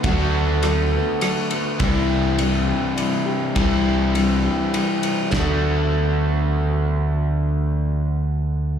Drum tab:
RD |x-x-xx|x-x-x-|x-x-xx|------|
SD |--r-r-|------|------|o-----|
BD |o-----|o-----|o-----|o-----|

RD |------|
SD |------|
BD |------|